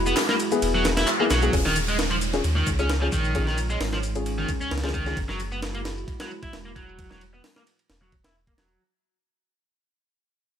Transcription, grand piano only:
0.52 1.17 B3 medium
0.52 1.17 E4 medium
0.52 1.17 G#4 loud
1.20 1.28 B3 medium
1.20 1.28 E4 medium
1.20 1.28 G#4 loud
1.42 1.48 B3 medium
1.42 1.48 E4 medium
1.42 1.48 G#4 loud
1.53 1.63 C#4 medium
1.53 1.63 F4 medium
1.53 1.63 G#4 medium
2.33 2.39 C#4 medium
2.33 2.39 F4 medium
2.33 2.39 G#4 loud
2.79 2.84 C#4 medium
2.79 2.84 F4 medium
2.79 2.84 G#4 loud
3.02 3.07 C#4 medium
3.02 3.07 F4 medium
3.02 3.07 G#4 medium
3.35 3.41 C#4 medium
3.35 3.41 F4 medium
3.35 3.41 G#4 loud
4.15 4.81 C#4 medium
4.15 4.81 F4 medium
4.15 4.81 G#4 medium
4.83 4.92 C#4 medium
4.83 4.92 F4 medium
4.83 4.92 G#4 medium
5.06 5.12 C#4 medium
5.06 5.12 F4 medium
5.06 5.12 G#4 medium

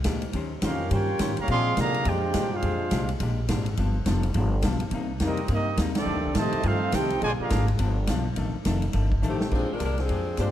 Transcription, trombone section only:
0.61 0.88 A#3 medium
0.61 0.88 C#4 medium
0.61 0.88 F4 medium
0.90 1.33 A#3 medium
0.90 1.33 C#4 medium
0.90 1.33 G4 medium
1.37 1.48 C#3 medium
1.37 1.48 G3 medium
1.37 1.48 A#3 medium
1.47 1.74 F3 loud
1.47 1.75 G#3 loud
1.47 1.74 C4 loud
1.76 2.03 D3 medium
1.76 2.03 F3 medium
1.76 2.03 A#3 medium
2.06 2.52 G#3 medium
2.06 2.52 D4 medium
2.06 2.52 G4 medium
2.53 3.10 G#3 medium
2.53 3.09 D4 medium
2.53 3.09 F4 medium
5.22 5.49 G3 medium
5.22 5.48 A#3 medium
5.22 5.48 D#4 medium
5.51 5.77 G3 medium
5.51 5.77 A#3 medium
5.51 5.77 D#4 medium
5.96 6.33 D#3 medium
5.96 6.33 A3 medium
5.96 6.33 D4 medium
6.35 6.64 C3 medium
6.35 6.64 D#3 medium
6.35 6.63 A3 medium
6.64 6.93 A3 medium
6.64 6.93 C4 medium
6.64 6.93 F4 medium
6.94 7.22 C4 medium
6.94 7.23 D#4 medium
6.94 7.22 G4 medium
7.21 7.29 D3 medium
7.21 7.29 F3 loud
7.21 7.30 G#3 loud
7.39 7.66 D3 medium
7.39 7.66 F3 medium
7.39 7.66 A#3 medium

